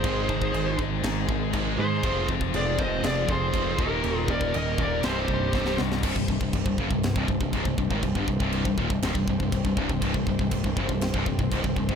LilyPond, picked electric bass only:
\new Staff \with { instrumentName = "Picked electric bass" } { \clef bass \time 4/4 \key c \minor \tempo 4 = 120 aes,,8 aes,,8 aes,,8 aes,,8 aes,,8 aes,,8 aes,,8 aes,8 | f,,8 f,,8 f,,8 f,,8 f,,8 f,,8 f,,8 ees,,8 | ees,,8 ees,,8 ees,,8 ees,,8 c,,8 c,,8 c,,8 c,8 | c,,16 c,,16 c,,16 c,,16 c,,16 c,,16 fis,,16 c,,8 c,,16 c,,16 c,,16 des,,16 c,,16 c,,16 aes,,16 |
c,,16 g,,16 c,,16 c,,8 c,,16 ees,,16 c,,16 des,,16 c,,16 c,,16 c,,16 c,,16 c,,16 c,,16 c,,16 | c,,16 c,,16 c,,16 c,,16 c,,16 c,,16 fis,,16 c,,8 c,,16 c,,16 c,,16 des,,16 c,,16 c,,16 aes,,16 | }